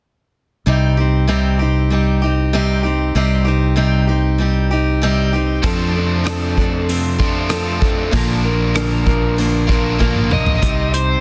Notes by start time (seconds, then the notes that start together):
0.66 C2 C3 G3 C4 D#4 G4
0.97 C4 D#4 G4
1.27 C3 G3 C4 D#4 G4
1.59 C4 D#4 G4
1.90 G3 C4 D#4 G4
2.22 C4 D#4 G4
2.53 C3 G3 C4 D#4 G4
2.83 C4 D#4 G4
3.15 C2 C3 G3 C4 D#4 G4
3.45 C4 D#4 G4
3.76 C3 G3 C4 D#4 G4
4.07 C4 D#4 G4
4.38 G3 C4 D#4 G4
4.71 C4 D#4 G4
5.02 C3 G3 C4 D#4 G4
5.33 C4 D#4 G4
5.63 F2 C3 F3 A3 C4 D4 F4 A4, kick, open hi-hat
5.95 C4 D4 A4
6.24 F3 C4 D4 A4, cross-stick, open hi-hat
6.57 C4 D4 A4, kick
6.88 F3 C4 D4 A4, open hi-hat
7.18 C3 F3 A3 C4 D4 F4 A4, kick
7.22 F2
7.49 F2 C3 F3 A3 C4 D4 F4 A4, cross-stick, open hi-hat
7.80 C4 D4 A4, kick
8.11 A#1 A#2 D3 F3 A#3 D4 A#4, kick, open hi-hat
8.16 F4
8.43 F3 A#3 D4 A#4
8.74 A#2 D3 F3 A#3 D4 A#4, cross-stick, open hi-hat
9.06 F3 A#3 D4 A#4, kick
9.36 F3 A#3 D4 A#4, open hi-hat
9.67 A#2 D3 A#3 D4 F4 A#4, kick
9.71 F3
9.99 A#2 D3 F3 A#3 D4 A#4, kick
10.03 F4
10.15 mid tom
10.31 F3 A#3 A#4 D#5, mid tom
10.46 floor tom
10.62 C2 C3 G3 C4 D#4 G4, kick, closed hi-hat
10.93 C4 D#4 G4 C5, closed hi-hat